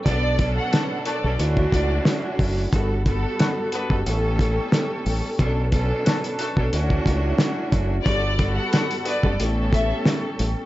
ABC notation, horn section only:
X:1
M:4/4
L:1/16
Q:"Swing 16ths" 1/4=90
K:Bm
V:1 name="Horn section"
z4 [A,DFA] z [A,DFA]2 z8 | z4 [A,DFA] z [B,DFB]2 z8 | z4 [A,DFA] z [A,DFA]2 z8 | z4 [A,DFA] z [B,DFB]2 z8 |]